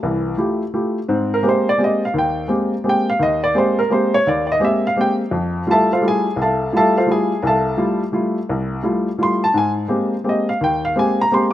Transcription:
0.03 0.33 C2 medium
0.03 0.34 E3 medium
0.37 0.61 A3 soft
0.37 0.62 E4 soft
0.37 0.62 F4 soft
0.37 0.62 G4 medium
0.74 0.98 A3 soft
0.74 0.98 E4 soft
0.74 0.98 F4 soft
0.74 0.98 G4 soft
1.09 1.39 G#2 medium
1.09 1.39 C4 medium
1.34 1.45 A#4 medium
1.43 1.67 G#3 medium
1.43 1.67 A#3 soft
1.43 1.68 C4 soft
1.43 1.68 G4 medium
1.43 1.47 B4 soft
1.49 1.68 C5 medium
1.69 1.80 D5 medium
1.78 2.03 G#3 soft
1.78 2.03 A#3 soft
1.78 2.03 C4 soft
1.78 2.03 G4 medium
1.84 2.04 D#5 medium
2.05 2.16 F5 medium
2.14 2.45 D#2 medium
2.18 2.49 G5 medium
2.48 2.73 G#3 medium
2.48 2.73 A#3 soft
2.48 2.73 C4 soft
2.48 2.73 G4 medium
2.84 3.08 G#3 soft
2.84 3.09 A#3 soft
2.84 3.09 C4 soft
2.84 3.08 G4 medium
2.89 3.09 G5 medium
3.10 3.21 F5 medium
3.19 3.50 D#2 medium
3.19 3.44 D#5 medium
3.44 3.55 D5 medium
3.54 3.79 G#3 medium
3.54 3.79 A#3 soft
3.54 3.79 C4 soft
3.54 3.79 G4 medium
3.54 3.79 C5 medium
3.79 3.91 A#4 medium
3.90 4.14 G#3 soft
3.90 4.14 A#3 soft
3.90 4.15 C4 soft
3.90 4.15 G4 medium
3.90 4.14 C5 medium
4.14 4.26 C#5 medium
4.27 4.57 D#2 medium
4.27 4.45 D5 medium
4.47 4.48 D5 medium
4.52 4.62 D#5 medium
4.60 4.84 G#3 medium
4.60 4.85 A#3 medium
4.60 4.85 C4 soft
4.60 4.85 G4 medium
4.65 4.85 E5 medium
4.87 4.98 F5 medium
4.96 5.20 G#3 soft
4.96 5.20 A#3 soft
4.96 5.21 C4 soft
4.96 5.21 G4 medium
5.01 5.13 G5 medium
5.31 5.62 F2 medium
5.67 5.91 G3 soft
5.67 5.91 A3 soft
5.67 5.91 E4 soft
5.67 5.91 F4 medium
5.71 5.91 A4 medium
5.71 5.91 E5 medium
5.71 5.91 F5 medium
5.71 5.91 A5 medium
5.93 6.01 F4 medium
5.93 6.04 A4 medium
5.93 6.04 C5 medium
5.93 6.04 F5 medium
6.01 6.26 G3 soft
6.01 6.26 A3 soft
6.01 6.26 E4 soft
6.01 6.26 F4 medium
6.08 6.38 G#4 medium
6.08 6.38 G#5 medium
6.36 6.67 C2 medium
6.42 6.76 A4 medium
6.42 6.76 E5 medium
6.42 6.76 F5 medium
6.42 6.75 A5 medium
6.72 6.97 G3 medium
6.72 6.97 A3 soft
6.72 6.97 E4 soft
6.72 6.96 F4 medium
6.77 6.96 A4 medium
6.77 6.97 E5 medium
6.77 6.96 F5 medium
6.77 6.97 A5 medium
6.97 7.06 F4 medium
6.97 7.09 A4 medium
6.97 7.09 C5 medium
6.97 7.09 F5 medium
7.07 7.31 G3 soft
7.07 7.31 A3 soft
7.07 7.32 E4 soft
7.07 7.32 F4 medium
7.12 7.43 G#4 medium
7.12 7.41 G#5 medium
7.42 7.74 C2 medium
7.42 7.45 G#5 medium
7.47 7.99 A4 medium
7.47 7.99 E5 medium
7.47 7.99 F5 medium
7.47 7.99 A5 medium
7.77 8.02 G3 medium
7.77 8.02 A3 soft
7.77 8.02 E4 soft
7.77 8.02 F4 medium
8.12 8.37 G3 soft
8.12 8.37 A3 soft
8.12 8.37 E4 soft
8.12 8.38 F4 medium
8.49 8.80 C2 medium
8.83 9.07 G3 soft
8.83 9.08 A3 soft
8.83 9.08 E4 soft
8.83 9.08 F4 medium
9.18 9.43 G3 soft
9.18 9.43 A3 soft
9.18 9.43 E4 soft
9.18 9.43 F4 medium
9.23 9.43 C6 medium
9.44 9.55 A5 medium
9.54 9.85 G#2 medium
9.54 9.70 G#5 medium
9.88 10.13 G#3 medium
9.88 10.13 A#3 soft
9.88 10.13 C4 soft
9.88 10.13 G4 medium
10.24 10.48 G#3 soft
10.24 10.48 A#3 soft
10.24 10.49 C4 soft
10.24 10.49 G4 medium
10.29 10.49 D#5 medium
10.49 10.60 F5 medium
10.61 10.91 D#2 medium
10.61 10.84 G5 medium
10.85 10.96 F5 medium
10.96 11.19 G#3 soft
10.96 11.20 A#3 soft
10.96 11.19 C4 soft
10.96 11.20 G4 medium
10.96 11.19 G#5 medium
11.21 11.32 A#5 medium
11.31 11.53 G#3 soft
11.31 11.53 A#3 soft
11.31 11.53 C4 soft
11.31 11.53 G4 medium
11.31 11.53 C6 medium

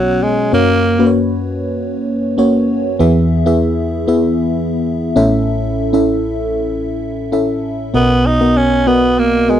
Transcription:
0.00 0.49 B1 medium
0.00 0.49 B2 medium
0.00 0.24 F#3 medium
0.00 0.55 B3 medium
0.00 0.53 C#4 medium
0.00 0.53 F#4 medium
0.00 0.53 C#5 medium
0.23 0.53 G#3 medium
0.52 2.96 F#2 medium
0.52 0.94 A#3 medium
0.52 1.11 A#3 medium
0.52 0.94 C#4 medium
0.52 0.94 F#4 medium
0.52 0.95 C#5 medium
0.99 2.10 A#3 medium
0.99 2.10 C#4 medium
0.99 2.10 F#4 medium
0.99 1.06 B4 medium
1.07 2.14 C#5 medium
2.38 2.93 A#3 medium
2.38 2.94 C#4 medium
2.38 2.94 F#4 medium
2.38 2.94 C#5 medium
2.99 5.12 E2 medium
2.99 5.12 E3 medium
2.99 3.41 B3 medium
2.99 3.42 E4 medium
2.99 3.42 G#4 medium
2.99 3.42 E5 loud
3.46 4.02 B3 medium
3.46 4.02 E4 medium
3.46 4.02 G#4 medium
3.46 4.02 E5 medium
4.08 5.16 B3 medium
4.08 5.15 E4 medium
4.08 5.17 G#4 medium
4.08 5.16 E5 medium
5.16 7.60 A1 medium
5.16 7.60 A2 medium
5.16 5.85 C#4 medium
5.16 5.86 E4 medium
5.16 5.86 A4 medium
5.16 5.86 E5 loud
5.93 7.04 C#4 medium
5.93 7.05 E4 medium
5.93 7.05 A4 medium
5.93 7.05 E5 medium
7.32 7.88 C#4 medium
7.32 7.88 E4 medium
7.32 7.88 A4 medium
7.32 7.89 E5 medium
7.94 9.60 B1 medium
7.94 9.60 B2 medium
7.94 8.36 B3 medium
7.94 8.28 B3 loud
7.94 8.36 F#4 medium
7.94 8.36 A#4 medium
7.94 8.37 D#5 medium
8.26 8.58 D#4 medium
8.40 8.82 B3 medium
8.40 8.82 F#4 medium
8.40 8.83 A#4 medium
8.40 8.83 D#5 medium
8.57 8.89 C#4 loud
8.87 9.43 B3 medium
8.87 9.21 B3 medium
8.87 9.43 F#4 medium
8.87 9.43 A#4 medium
8.87 8.94 D5 medium
8.94 9.46 D#5 medium
9.19 9.51 A#3 medium
9.48 9.60 G#3 medium
9.48 9.60 B3 medium
9.48 9.60 F#4 medium
9.48 9.60 A#4 medium
9.48 9.60 D#5 medium

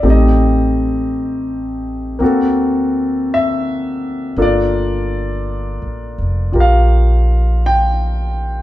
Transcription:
0.03 2.16 A1 medium
0.03 2.20 A3 soft
0.03 2.19 C4 soft
0.03 2.21 D#4 soft
0.03 2.21 G4 soft
0.10 2.20 D#5 medium
2.19 4.33 D2 medium
2.19 4.36 A#3 soft
2.19 4.37 C4 soft
2.19 4.38 F#4 soft
2.24 4.37 A4 soft
3.34 4.36 E5 medium
4.37 5.77 G1 medium
4.37 8.62 A#3 soft
4.37 8.62 D4 soft
4.37 6.51 F4 soft
4.37 8.62 A4 soft
4.42 6.17 D5 medium
5.82 6.15 A1 soft
6.18 6.51 F1 soft
6.52 8.62 A#1 medium
6.52 8.62 F4 soft
6.52 8.62 G4 soft
6.52 8.62 A#4 soft
6.60 7.60 F5 medium
7.66 8.62 G5 medium

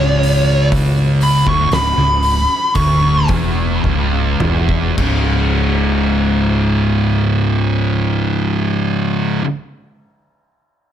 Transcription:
0.00 1.42 C#1 medium
0.00 1.44 C#2 loud
0.00 0.68 C#5 medium
0.23 open hi-hat medium
0.72 kick loud
0.72 open hi-hat medium
1.21 1.46 B5 loud
1.21 open hi-hat medium
1.46 1.70 D1 medium
1.46 1.70 D2 loud
1.46 1.72 C#6 medium
1.46 kick loud
1.71 1.95 C#1 medium
1.71 1.96 C#2 medium
1.71 2.73 B5 medium
1.71 snare loud
1.71 open hi-hat medium
1.97 2.45 C#1 medium
1.97 2.38 C#2 medium
2.23 open hi-hat medium
2.75 3.25 D1 medium
2.75 3.27 D2 loud
2.75 3.27 C#6 medium
2.75 kick loud
2.75 open hi-hat medium
3.28 3.80 E1 medium
3.28 3.82 E2 loud
3.28 kick loud
3.28 open hi-hat soft
3.83 4.36 C#1 medium
3.83 4.38 C#2 loud
3.83 kick medium
4.40 4.94 E1 medium
4.40 4.96 E2 loud
4.40 mid tom medium
4.69 kick medium
4.97 9.36 C#1 medium
4.97 9.40 C#2 medium
4.97 9.43 G#2 medium
4.97 kick loud
4.97 crash medium
5.02 9.44 C#3 medium

